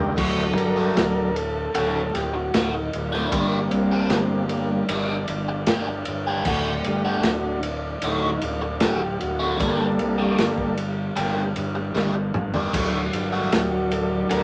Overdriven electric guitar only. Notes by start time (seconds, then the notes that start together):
Already playing: G2 D3 G3 A#3 D4 G4
0.17 A2 D3 A3 F#4
0.76 A2 D3 A3 F#4
1.74 A2 D3 A3 F#4
2.34 muted overdriven electric guitar stroke
2.54 A2 D3 A3 F#4
2.74 muted overdriven electric guitar stroke
3.12 A2 D3 A3 F#4
3.32 G3 A#3 D4 G4
3.92 G3 A#3 D4 G4
4.90 G3 A#3 D4 G4
5.49 muted overdriven electric guitar stroke
5.68 G3 A#3 D4 G4
5.88 muted overdriven electric guitar stroke
6.27 G3 A#3 D4 G4
6.46 A2 D3 A3 F#4
7.05 A2 D3 A3 F#4
8.03 A2 D3 A3 F#4
8.61 muted overdriven electric guitar stroke
8.81 A2 D3 A3 F#4
9.01 muted overdriven electric guitar stroke
9.39 A2 D3 A3 F#4
9.59 G3 A#3 D4 G4
10.18 G3 A#3 D4 G4
11.16 G3 A#3 D4 G4
11.75 muted overdriven electric guitar stroke
11.94 G3 A#3 D4 G4
12.15 muted overdriven electric guitar stroke
12.54 G3 A#3 D4 G4
12.73 A2 D3 A3 F#4
13.32 A2 D3 A3 F#4
14.29 A2 D3 A3 F#4